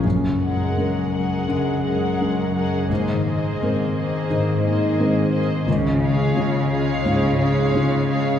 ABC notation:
X:1
M:4/4
L:1/8
Q:1/4=86
K:Gblyd
V:1 name="Violin section"
z [Bg]2 [Bg]2 [Bg]2 [Bg] | [ce] [ce]2 [ce]2 [ce]2 [ce] | z [df]2 [df]2 [df]2 [df] |]
V:2 name="Viola section"
z [A,A]2 [A,A]2 [A,A]2 [A,A] | [B,A] [B,A]2 [B,A]2 [B,A]2 [B,A] | z [A,A]2 [A,A]2 [A,A]2 [A,A] |]
V:3 name="Harp"
(3[G,,A,DABdb] D, A, (3D B D (3G,, D, A, (3D B D | (3A,, E, A, (3C B C (3A,, E, A, (3C B C | (3D, A, D (3F A F (3D, A, D (3F A F |]
V:4 name="Felt piano"
G,,2 [A,DB]2 D,2 [A,DB]2 | A,,2 [A,CB]2 E,2 [A,CB]2 | D,,2 [A,DF]2 A,,2 [A,DF]2 |]
V:5 name="Cello section" clef=bass
G,,2 G,,2 G,,2 G,,2 | A,,2 A,,2 A,,2 A,,2 | D,2 D,2 D,2 D,2 |]
V:6 name="Double bass section" clef=bass
G,,,2 z6 | A,,,2 z6 | D,,2 z6 |]